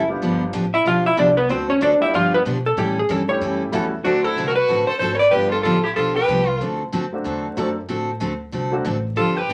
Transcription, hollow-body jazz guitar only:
0, 0, Header, 1, 2, 480
1, 0, Start_track
1, 0, Tempo, 320000
1, 322, Time_signature, 4, 2, 24, 8
1, 14300, End_track
2, 0, Start_track
2, 0, Title_t, "Hollow-body jazz guitar"
2, 0, Program_c, 0, 26
2, 1107, Note_on_c, 0, 76, 95
2, 1120, Note_on_c, 0, 64, 77
2, 1281, Note_off_c, 0, 76, 0
2, 1287, Note_off_c, 0, 64, 0
2, 1311, Note_on_c, 0, 65, 98
2, 1312, Note_on_c, 0, 77, 105
2, 1583, Note_off_c, 0, 77, 0
2, 1585, Note_off_c, 0, 65, 0
2, 1595, Note_on_c, 0, 76, 102
2, 1606, Note_on_c, 0, 64, 89
2, 1765, Note_off_c, 0, 76, 0
2, 1770, Note_off_c, 0, 64, 0
2, 1785, Note_on_c, 0, 62, 65
2, 1788, Note_on_c, 0, 74, 86
2, 2059, Note_on_c, 0, 71, 90
2, 2060, Note_off_c, 0, 74, 0
2, 2062, Note_off_c, 0, 62, 0
2, 2066, Note_on_c, 0, 59, 75
2, 2236, Note_off_c, 0, 71, 0
2, 2239, Note_off_c, 0, 59, 0
2, 2256, Note_on_c, 0, 60, 71
2, 2256, Note_on_c, 0, 72, 85
2, 2534, Note_off_c, 0, 72, 0
2, 2537, Note_off_c, 0, 60, 0
2, 2546, Note_on_c, 0, 61, 71
2, 2547, Note_on_c, 0, 73, 98
2, 2717, Note_off_c, 0, 73, 0
2, 2720, Note_off_c, 0, 61, 0
2, 2731, Note_on_c, 0, 62, 77
2, 2738, Note_on_c, 0, 74, 78
2, 3013, Note_off_c, 0, 74, 0
2, 3014, Note_off_c, 0, 62, 0
2, 3026, Note_on_c, 0, 76, 100
2, 3033, Note_on_c, 0, 64, 54
2, 3200, Note_off_c, 0, 76, 0
2, 3201, Note_off_c, 0, 64, 0
2, 3225, Note_on_c, 0, 77, 121
2, 3232, Note_on_c, 0, 65, 89
2, 3500, Note_off_c, 0, 77, 0
2, 3503, Note_off_c, 0, 65, 0
2, 3515, Note_on_c, 0, 71, 116
2, 3525, Note_on_c, 0, 59, 67
2, 3620, Note_off_c, 0, 71, 0
2, 3624, Note_off_c, 0, 59, 0
2, 3996, Note_on_c, 0, 69, 91
2, 4163, Note_off_c, 0, 69, 0
2, 4178, Note_on_c, 0, 67, 84
2, 4456, Note_off_c, 0, 67, 0
2, 4492, Note_on_c, 0, 68, 82
2, 4661, Note_off_c, 0, 68, 0
2, 4661, Note_on_c, 0, 69, 86
2, 4935, Note_on_c, 0, 73, 101
2, 4937, Note_off_c, 0, 69, 0
2, 5380, Note_off_c, 0, 73, 0
2, 6067, Note_on_c, 0, 66, 82
2, 6365, Note_off_c, 0, 66, 0
2, 6365, Note_on_c, 0, 69, 83
2, 6715, Note_on_c, 0, 70, 75
2, 6729, Note_off_c, 0, 69, 0
2, 6828, Note_off_c, 0, 70, 0
2, 6834, Note_on_c, 0, 71, 94
2, 7302, Note_off_c, 0, 71, 0
2, 7308, Note_on_c, 0, 72, 85
2, 7474, Note_off_c, 0, 72, 0
2, 7492, Note_on_c, 0, 72, 95
2, 7719, Note_off_c, 0, 72, 0
2, 7725, Note_on_c, 0, 73, 62
2, 7791, Note_on_c, 0, 74, 94
2, 7805, Note_off_c, 0, 73, 0
2, 7967, Note_on_c, 0, 71, 90
2, 7990, Note_off_c, 0, 74, 0
2, 8275, Note_off_c, 0, 71, 0
2, 8281, Note_on_c, 0, 69, 84
2, 8431, Note_off_c, 0, 69, 0
2, 8449, Note_on_c, 0, 69, 94
2, 8755, Note_on_c, 0, 67, 81
2, 8768, Note_off_c, 0, 69, 0
2, 8940, Note_on_c, 0, 69, 91
2, 8952, Note_off_c, 0, 67, 0
2, 9240, Note_off_c, 0, 69, 0
2, 9246, Note_on_c, 0, 71, 79
2, 9936, Note_off_c, 0, 71, 0
2, 9936, Note_on_c, 0, 69, 79
2, 10149, Note_off_c, 0, 69, 0
2, 13754, Note_on_c, 0, 69, 82
2, 14053, Note_off_c, 0, 69, 0
2, 14053, Note_on_c, 0, 71, 87
2, 14300, Note_off_c, 0, 71, 0
2, 14300, End_track
0, 0, End_of_file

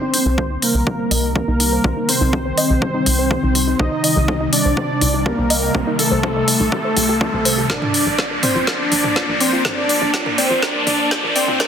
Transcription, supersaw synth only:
0, 0, Header, 1, 2, 480
1, 0, Start_track
1, 0, Tempo, 487805
1, 1814, Time_signature, 4, 2, 24, 8
1, 11488, End_track
2, 0, Start_track
2, 0, Title_t, "Supersaw synth"
2, 0, Program_c, 0, 81
2, 0, Note_on_c, 0, 72, 101
2, 519, Note_off_c, 0, 72, 0
2, 614, Note_on_c, 0, 70, 97
2, 1239, Note_off_c, 0, 70, 0
2, 1334, Note_on_c, 0, 70, 107
2, 2054, Note_off_c, 0, 70, 0
2, 2055, Note_on_c, 0, 72, 104
2, 3734, Note_off_c, 0, 72, 0
2, 3734, Note_on_c, 0, 75, 103
2, 4359, Note_off_c, 0, 75, 0
2, 4454, Note_on_c, 0, 74, 100
2, 5174, Note_off_c, 0, 74, 0
2, 5174, Note_on_c, 0, 70, 109
2, 5894, Note_off_c, 0, 70, 0
2, 5894, Note_on_c, 0, 69, 99
2, 7479, Note_off_c, 0, 69, 0
2, 7574, Note_on_c, 0, 74, 97
2, 8199, Note_off_c, 0, 74, 0
2, 8294, Note_on_c, 0, 72, 91
2, 8515, Note_off_c, 0, 72, 0
2, 8535, Note_on_c, 0, 74, 97
2, 9160, Note_off_c, 0, 74, 0
2, 9255, Note_on_c, 0, 72, 95
2, 9475, Note_off_c, 0, 72, 0
2, 9495, Note_on_c, 0, 74, 98
2, 10120, Note_off_c, 0, 74, 0
2, 10214, Note_on_c, 0, 72, 92
2, 10435, Note_off_c, 0, 72, 0
2, 10454, Note_on_c, 0, 74, 97
2, 11079, Note_off_c, 0, 74, 0
2, 11175, Note_on_c, 0, 72, 93
2, 11395, Note_off_c, 0, 72, 0
2, 11414, Note_on_c, 0, 74, 97
2, 11488, Note_off_c, 0, 74, 0
2, 11488, End_track
0, 0, End_of_file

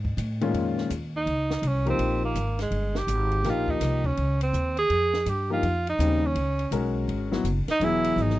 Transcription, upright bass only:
0, 0, Header, 1, 3, 480
1, 0, Start_track
1, 0, Tempo, 363636
1, 711, Time_signature, 4, 2, 24, 8
1, 11079, End_track
2, 0, Start_track
2, 0, Title_t, "Upright bass"
2, 0, Program_c, 0, 32
2, 0, Note_on_c, 0, 44, 85
2, 216, Note_off_c, 0, 44, 0
2, 226, Note_on_c, 0, 45, 94
2, 694, Note_off_c, 0, 45, 0
2, 708, Note_on_c, 0, 41, 68
2, 1175, Note_off_c, 0, 41, 0
2, 1187, Note_on_c, 0, 39, 79
2, 1655, Note_off_c, 0, 39, 0
2, 1665, Note_on_c, 0, 37, 76
2, 2134, Note_off_c, 0, 37, 0
2, 2139, Note_on_c, 0, 36, 85
2, 2611, Note_off_c, 0, 36, 0
2, 2620, Note_on_c, 0, 34, 73
2, 3086, Note_off_c, 0, 34, 0
2, 3094, Note_on_c, 0, 32, 80
2, 3569, Note_off_c, 0, 32, 0
2, 3575, Note_on_c, 0, 31, 82
2, 4046, Note_off_c, 0, 31, 0
2, 4054, Note_on_c, 0, 32, 92
2, 4529, Note_off_c, 0, 32, 0
2, 4539, Note_on_c, 0, 34, 77
2, 5012, Note_off_c, 0, 34, 0
2, 5020, Note_on_c, 0, 36, 83
2, 5493, Note_off_c, 0, 36, 0
2, 5509, Note_on_c, 0, 37, 80
2, 5974, Note_off_c, 0, 37, 0
2, 5982, Note_on_c, 0, 39, 89
2, 6454, Note_off_c, 0, 39, 0
2, 6463, Note_on_c, 0, 41, 78
2, 6934, Note_off_c, 0, 41, 0
2, 6941, Note_on_c, 0, 43, 84
2, 7413, Note_off_c, 0, 43, 0
2, 7425, Note_on_c, 0, 41, 78
2, 7895, Note_off_c, 0, 41, 0
2, 7902, Note_on_c, 0, 39, 88
2, 8373, Note_off_c, 0, 39, 0
2, 8386, Note_on_c, 0, 37, 76
2, 8855, Note_off_c, 0, 37, 0
2, 8860, Note_on_c, 0, 35, 83
2, 9332, Note_off_c, 0, 35, 0
2, 9340, Note_on_c, 0, 32, 80
2, 9811, Note_off_c, 0, 32, 0
2, 9817, Note_on_c, 0, 30, 90
2, 10111, Note_off_c, 0, 30, 0
2, 10294, Note_on_c, 0, 28, 76
2, 10767, Note_off_c, 0, 28, 0
2, 10773, Note_on_c, 0, 32, 92
2, 11079, Note_off_c, 0, 32, 0
2, 11079, End_track
3, 0, Start_track
3, 0, Title_t, "Muted upright bass strokes"
3, 10128, Note_on_c, 9, 29, 42
3, 10260, Note_off_c, 9, 29, 0
3, 11079, End_track
0, 0, End_of_file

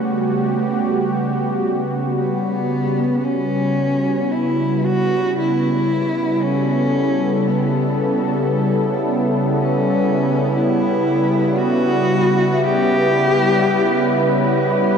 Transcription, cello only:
0, 0, Header, 1, 2, 480
1, 0, Start_track
1, 0, Tempo, 1060071
1, 39, Time_signature, 3, 2, 24, 8
1, 2440, Tempo, 1039861
1, 6867, End_track
2, 0, Start_track
2, 0, Title_t, "Cello"
2, 0, Program_c, 0, 42
2, 0, Note_on_c, 0, 57, 75
2, 989, Note_off_c, 0, 57, 0
2, 991, Note_on_c, 0, 59, 80
2, 1470, Note_on_c, 0, 61, 90
2, 1477, Note_off_c, 0, 59, 0
2, 1955, Note_on_c, 0, 64, 89
2, 1961, Note_off_c, 0, 61, 0
2, 2198, Note_on_c, 0, 66, 95
2, 2205, Note_off_c, 0, 64, 0
2, 2438, Note_off_c, 0, 66, 0
2, 2440, Note_on_c, 0, 64, 92
2, 2919, Note_on_c, 0, 61, 94
2, 2926, Note_off_c, 0, 64, 0
2, 3402, Note_on_c, 0, 59, 74
2, 3409, Note_off_c, 0, 61, 0
2, 4123, Note_off_c, 0, 59, 0
2, 4364, Note_on_c, 0, 61, 89
2, 4829, Note_on_c, 0, 64, 94
2, 4836, Note_off_c, 0, 61, 0
2, 5296, Note_on_c, 0, 66, 107
2, 5303, Note_off_c, 0, 64, 0
2, 5784, Note_on_c, 0, 67, 113
2, 5791, Note_off_c, 0, 66, 0
2, 6754, Note_off_c, 0, 67, 0
2, 6867, End_track
0, 0, End_of_file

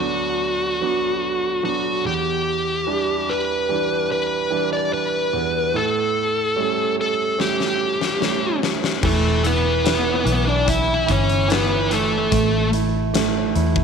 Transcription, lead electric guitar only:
0, 0, Header, 1, 2, 480
1, 0, Start_track
1, 0, Tempo, 821918
1, 1435, Time_signature, 4, 2, 24, 8
1, 8082, End_track
2, 0, Start_track
2, 0, Title_t, "Lead electric guitar"
2, 0, Program_c, 0, 29
2, 0, Note_on_c, 0, 66, 61
2, 956, Note_off_c, 0, 66, 0
2, 963, Note_on_c, 0, 66, 68
2, 1203, Note_off_c, 0, 66, 0
2, 1206, Note_on_c, 0, 67, 75
2, 1924, Note_on_c, 0, 71, 72
2, 1942, Note_off_c, 0, 67, 0
2, 2397, Note_off_c, 0, 71, 0
2, 2404, Note_on_c, 0, 71, 81
2, 2736, Note_off_c, 0, 71, 0
2, 2761, Note_on_c, 0, 74, 74
2, 2878, Note_off_c, 0, 74, 0
2, 2881, Note_on_c, 0, 71, 76
2, 3366, Note_on_c, 0, 69, 77
2, 3372, Note_off_c, 0, 71, 0
2, 4057, Note_off_c, 0, 69, 0
2, 4093, Note_on_c, 0, 69, 70
2, 4326, Note_off_c, 0, 69, 0
2, 4328, Note_on_c, 0, 67, 68
2, 5018, Note_off_c, 0, 67, 0
2, 5282, Note_on_c, 0, 57, 66
2, 5284, Note_on_c, 0, 69, 71
2, 5503, Note_off_c, 0, 57, 0
2, 5526, Note_off_c, 0, 69, 0
2, 5526, Note_on_c, 0, 59, 65
2, 5530, Note_on_c, 0, 71, 82
2, 6097, Note_off_c, 0, 59, 0
2, 6117, Note_on_c, 0, 62, 65
2, 6123, Note_off_c, 0, 71, 0
2, 6126, Note_on_c, 0, 74, 85
2, 6228, Note_off_c, 0, 62, 0
2, 6233, Note_off_c, 0, 74, 0
2, 6244, Note_on_c, 0, 64, 75
2, 6249, Note_on_c, 0, 76, 108
2, 6463, Note_off_c, 0, 64, 0
2, 6483, Note_on_c, 0, 61, 69
2, 6489, Note_off_c, 0, 76, 0
2, 6492, Note_on_c, 0, 73, 82
2, 6703, Note_off_c, 0, 61, 0
2, 6726, Note_on_c, 0, 59, 64
2, 6727, Note_off_c, 0, 73, 0
2, 6729, Note_on_c, 0, 71, 82
2, 6945, Note_off_c, 0, 59, 0
2, 6960, Note_on_c, 0, 57, 56
2, 6964, Note_on_c, 0, 69, 63
2, 6969, Note_off_c, 0, 71, 0
2, 7415, Note_off_c, 0, 57, 0
2, 7415, Note_off_c, 0, 69, 0
2, 8082, End_track
0, 0, End_of_file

